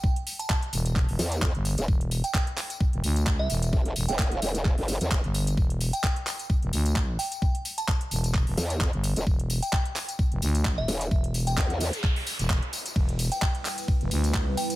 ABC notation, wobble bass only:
X:1
M:4/4
L:1/16
Q:"Swing 16ths" 1/4=130
K:Ephr
V:1 name="Wobble bass" clef=bass
z8 z2 E,,3 z2 E,,, | z16 | F,,,2 z E,,,3 E,,,3 G,,,2 E,, E,,, z3 | z16 |
z8 z2 E,,3 z2 E,,, | z12 z2 E,,,2 | z4 E,,3 z8 z | z16 |]